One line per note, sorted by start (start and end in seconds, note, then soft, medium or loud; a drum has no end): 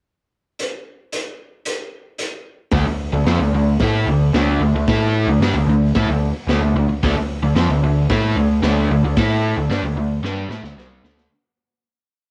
0.59 closed hi-hat medium
1.12 closed hi-hat medium
1.66 closed hi-hat medium
2.19 closed hi-hat medium
2.71 2.85 D2 loud
2.71 2.85 D3 medium
2.71 2.86 A3 loud
2.71 kick loud
2.71 snare loud
2.71 open hi-hat medium
2.86 3.11 D2 soft
2.86 muted overdriven electric guitar stroke medium
3.13 3.25 D2 medium
3.13 3.26 D3 medium
3.13 3.27 A3 medium
3.25 3.38 F2 medium
3.25 3.39 F3 medium
3.25 3.40 C4 loud
3.25 snare loud
3.25 open hi-hat medium
3.39 3.52 D2 medium
3.39 3.53 D3 medium
3.39 3.54 A3 medium
3.53 3.78 D2 medium
3.53 3.75 D3 medium
3.53 3.76 A3 medium
3.79 4.05 A2 loud
3.79 4.06 A3 medium
3.79 4.07 E4 medium
3.79 4.07 A4 loud
3.79 kick loud
3.79 snare loud
3.79 open hi-hat medium
4.06 4.32 D2 medium
4.06 4.29 D3 medium
4.06 4.29 A3 medium
4.33 4.58 D2 loud
4.33 4.60 D3 medium
4.33 4.60 A3 medium
4.33 4.61 D4 medium
4.33 snare loud
4.33 open hi-hat medium
4.60 4.73 D2 medium
4.60 4.75 D3 medium
4.60 4.75 A3 medium
4.74 4.86 D2 medium
4.74 4.88 D3 medium
4.74 4.87 A3 medium
4.88 5.25 A2 loud
4.88 5.28 A3 medium
4.88 5.28 E4 loud
4.88 5.28 A4 loud
4.88 kick loud
4.88 snare loud
4.88 open hi-hat medium
5.27 5.40 D2 medium
5.27 5.42 D3 medium
5.27 5.42 A3 medium
5.40 5.53 G2 medium
5.40 5.54 G3 medium
5.40 5.55 D4 loud
5.40 snare loud
5.40 open hi-hat medium
5.54 5.66 D2 medium
5.54 5.68 D3 medium
5.54 5.69 A3 medium
5.67 5.92 D2 medium
5.67 5.90 D3 medium
5.67 5.90 A3 medium
5.95 6.06 A2 loud
5.95 6.08 A3 medium
5.95 6.08 E4 medium
5.95 kick loud
5.95 snare loud
5.95 open hi-hat medium
6.06 6.32 D2 medium
6.06 6.30 D3 medium
6.06 6.30 A3 medium
6.47 6.60 D2 loud
6.47 6.61 D3 medium
6.47 6.62 A3 loud
6.47 snare loud
6.47 open hi-hat soft
6.60 6.73 D2 medium
6.60 6.75 D3 medium
6.60 6.75 A3 medium
6.74 6.87 D2 medium
6.74 6.88 D3 medium
6.74 6.89 A3 medium
6.88 7.01 D2 soft
6.88 muted overdriven electric guitar stroke medium
7.03 7.15 D2 loud
7.03 7.15 D3 loud
7.03 7.16 A3 loud
7.03 kick loud
7.03 snare loud
7.03 open hi-hat medium
7.16 7.41 D2 soft
7.16 muted overdriven electric guitar stroke medium
7.42 7.54 D2 medium
7.42 7.55 D3 medium
7.42 7.56 A3 medium
7.55 7.68 F2 loud
7.55 7.69 F3 medium
7.55 7.69 C4 loud
7.55 snare loud
7.55 open hi-hat medium
7.69 7.82 D2 medium
7.69 7.83 D3 medium
7.69 7.83 A3 medium
7.83 8.08 D2 medium
7.83 8.05 D3 medium
7.83 8.05 A3 medium
8.10 8.35 A2 loud
8.10 8.36 A3 medium
8.10 8.36 E4 medium
8.10 8.36 A4 loud
8.10 kick loud
8.10 snare loud
8.10 open hi-hat medium
8.35 8.61 D2 medium
8.35 8.58 D3 medium
8.35 8.58 A3 medium
8.62 8.87 D2 loud
8.62 8.89 D3 medium
8.62 8.89 A3 medium
8.62 8.89 D4 loud
8.62 snare loud
8.62 open hi-hat medium
8.90 9.02 D2 medium
8.90 9.03 D3 medium
8.90 9.04 A3 medium
9.03 9.15 D2 medium
9.03 9.17 D3 medium
9.03 9.16 A3 medium
9.16 9.54 A2 loud
9.16 9.56 A3 medium
9.16 9.56 E4 loud
9.16 9.57 A4 loud
9.16 kick loud
9.16 snare loud
9.16 open hi-hat medium
9.56 9.69 D2 medium
9.56 9.70 D3 medium
9.56 9.69 A3 medium
9.70 9.81 G2 loud
9.70 9.82 G3 medium
9.70 9.83 D4 loud
9.70 snare loud
9.70 open hi-hat medium
9.82 9.95 D2 medium
9.82 9.96 D3 medium
9.82 9.96 A3 medium
9.96 10.21 D2 medium
9.96 10.18 D3 medium
9.96 10.18 A3 medium
10.23 10.48 G2 loud
10.23 10.49 G3 loud
10.23 10.49 D4 loud
10.23 10.50 G4 loud
10.23 snare medium
10.49 10.62 A2 medium
10.49 10.62 A3 loud
10.49 10.63 E4 loud
10.49 snare medium
10.63 10.75 D2 loud
10.63 10.75 D3 loud
10.63 10.76 A3 loud
10.63 snare medium
10.76 11.01 C2 loud
10.76 11.02 C3 medium
10.76 11.02 G3 medium
10.76 11.03 C4 loud
10.76 snare medium
11.03 11.28 D2 medium
11.03 11.29 D3 medium
11.03 11.29 A3 medium
11.03 11.30 D4 loud
11.03 snare medium
11.18 snare medium